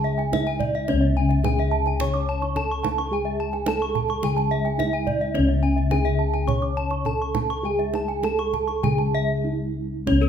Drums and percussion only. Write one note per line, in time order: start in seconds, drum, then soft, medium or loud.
0.19 kendang slap soft
0.33 kendang high soft
0.33 kendang low soft
0.47 kendang slap soft
0.60 kendang low soft
0.75 kendang slap soft
0.88 kendang high soft
1.31 kendang slap soft
1.44 kendang high soft
1.44 kendang low soft
1.59 kendang slap soft
1.86 kendang slap soft
2.00 kendang low soft
2.14 kendang slap soft
2.42 kendang slap soft
2.56 kendang low soft
2.84 kendang high soft
2.84 kendang low soft
2.98 kendang slap soft
3.53 kendang slap soft
3.66 kendang high soft
3.80 kendang slap soft
3.95 kendang low soft
4.09 kendang slap soft
4.23 kendang low soft
4.38 kendang slap soft
4.66 kendang slap soft
4.80 kendang high soft
4.80 kendang low soft
5.07 kendang low soft
5.21 kendang slap soft
5.35 kendang high soft
5.78 kendang slap soft
5.91 kendang high soft
5.91 kendang low soft
6.06 kendang slap soft
6.34 kendang slap soft
6.48 kendang low soft
6.62 kendang slap soft
6.90 kendang slap soft
7.05 kendang low soft
7.35 kendang high soft
7.35 kendang low soft
7.50 kendang slap soft
7.79 kendang slap soft
7.94 kendang high soft
8.09 kendang slap soft
8.23 kendang high soft
8.39 kendang slap soft
8.54 kendang low soft
8.68 kendang slap soft
8.84 kendang low soft
8.98 kendang slap soft
10.07 kendang low soft
10.23 kendang slap soft